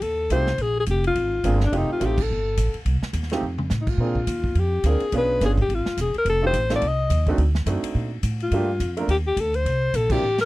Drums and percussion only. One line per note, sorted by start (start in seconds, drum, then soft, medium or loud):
0.02 kick soft
0.02 ride medium
0.30 kick soft
0.30 hi-hat pedal medium
0.30 ride medium
0.47 snare soft
0.58 kick soft
0.58 ride medium
0.86 kick soft
0.86 hi-hat pedal soft
0.86 ride medium
1.04 ride soft
1.15 kick soft
1.15 ride medium
1.44 kick soft
1.44 hi-hat pedal medium
1.44 ride medium
1.61 snare soft
1.72 kick soft
1.72 ride medium
2.01 kick soft
2.01 hi-hat pedal medium
2.01 ride medium
2.18 kick medium
2.18 crash medium
2.57 kick soft
2.57 hi-hat pedal medium
2.57 ride medium
2.74 ride soft
2.86 kick soft
2.86 ride medium
3.03 snare soft
3.13 kick soft
3.13 hi-hat pedal medium
3.13 ride medium
3.23 snare soft
3.30 snare soft
3.30 ride soft
3.58 mid tom medium
3.70 snare medium
3.70 hi-hat pedal medium
3.87 kick medium
3.87 crash medium
4.15 kick soft
4.27 kick soft
4.27 hi-hat pedal medium
4.27 ride medium
4.44 kick medium
4.55 kick soft
4.55 ride medium
4.84 kick soft
4.84 hi-hat pedal medium
4.84 ride medium
5.00 ride soft
5.12 kick soft
5.12 ride medium
5.41 kick soft
5.41 snare soft
5.41 hi-hat pedal soft
5.41 ride medium
5.58 kick medium
5.58 ride soft
5.69 kick soft
5.69 ride medium
5.86 snare medium
5.97 kick soft
5.97 hi-hat pedal medium
5.97 ride medium
6.14 ride soft
6.25 kick soft
6.25 ride medium
6.54 kick soft
6.54 hi-hat pedal medium
6.54 ride medium
6.70 snare medium
6.70 ride soft
6.82 kick soft
6.82 ride medium
7.10 kick soft
7.10 hi-hat pedal medium
7.10 ride medium
7.27 kick medium
7.27 ride soft
7.38 kick soft
7.38 ride medium
7.55 snare medium
7.66 kick soft
7.66 hi-hat pedal medium
7.66 ride medium
7.84 ride medium
7.95 kick soft
8.23 kick soft
8.23 hi-hat pedal medium
8.23 ride medium
8.40 ride soft
8.51 kick soft
8.51 ride medium
8.80 kick soft
8.80 hi-hat pedal medium
8.80 ride medium
8.97 ride soft
9.08 kick soft
9.08 ride medium
9.37 kick soft
9.37 hi-hat pedal medium
9.37 ride medium
9.54 ride soft
9.65 kick soft
9.65 ride medium
9.93 kick soft
9.93 hi-hat pedal medium
9.93 ride medium
10.10 kick medium
10.10 crash medium
10.38 snare medium
10.38 ride soft